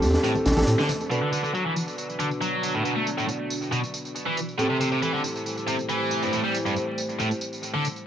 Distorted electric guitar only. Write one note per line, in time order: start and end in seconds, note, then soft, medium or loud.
0.24 0.31 A2 medium
0.79 0.89 D3 medium
1.10 1.18 B2 medium
1.22 1.29 D3 medium
1.32 1.40 D3 medium
1.43 1.51 D3 medium
1.54 1.64 F#3 medium
1.66 1.73 E3 medium
2.20 2.27 D3 medium
2.41 2.73 F#3 medium
2.74 2.84 A2 medium
2.84 2.92 B2 medium
2.96 3.06 A3 medium
3.18 3.25 A2 medium
3.72 3.79 B2 medium
4.26 4.36 E3 medium
4.58 4.66 A2 medium
4.70 4.77 C3 medium
4.80 4.88 C3 medium
4.92 4.99 C3 medium
5.02 5.12 E3 medium
5.13 5.20 D3 medium
5.67 5.75 C3 medium
5.89 6.21 E3 medium
6.22 6.32 G2 medium
6.33 6.40 A2 medium
6.44 6.54 G3 medium
6.66 6.73 G2 medium
7.19 7.27 A2 medium
7.74 7.84 D3 medium